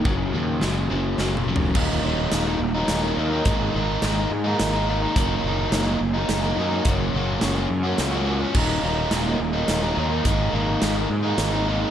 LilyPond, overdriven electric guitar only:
\new Staff \with { instrumentName = "Overdriven electric guitar" } { \clef bass \time 3/4 \key ees \minor \tempo 4 = 106 <ges, des ges>8 <ges, des ges>8 <ges, des ges>8 <ges, des ges>8 <ges, des ges>8 <ges, des ges>8 | <ees, bes, ees ges bes ees'>8 <ees ges bes ees'>8 <ees, bes, ees ges bes ees'>16 <ees ges bes ees'>8 <ees ges bes ees'>8 <ees ges bes ees'>16 <ees ges bes ees'>16 <ees ges bes ees'>16 | <aes, ees aes bes ees'>8 <ees aes bes ees'>8 <aes, ees aes bes ees'>16 <aes bes ees'>8 <aes bes ees'>8 <aes bes ees'>16 <ees aes bes ees'>16 <aes bes ees'>16 | <ees, bes, ees ges bes ees'>8 <ees ges bes ees'>8 <ees, bes, ees ges bes ees'>16 <ees ges bes ees'>8 <ees ges bes ees'>8 <ees ges bes ees'>16 <ees ges bes ees'>16 <ees ges bes ees'>16 |
<ges, des ges bes des' ges'>8 <ges bes des' ges'>8 <ges, des ges bes des' ges'>16 <ges bes des' ges'>8 <ges bes des' ges'>8 <ges bes des' ges'>16 <ges bes des' ges'>16 <ges bes des' ges'>16 | <ees, bes, ees ges bes ees'>8 <ees ges bes ees'>8 <ees, bes, ees ges bes ees'>16 <ees ges bes ees'>8 <ees ges bes ees'>8 <ees ges bes ees'>16 <ees ges bes ees'>16 <ees ges bes ees'>16 | <aes, ees aes bes ees'>8 <ees aes bes ees'>8 <aes, ees aes bes ees'>16 <aes bes ees'>8 <aes bes ees'>8 <aes bes ees'>16 <ees aes bes ees'>16 <aes bes ees'>16 | }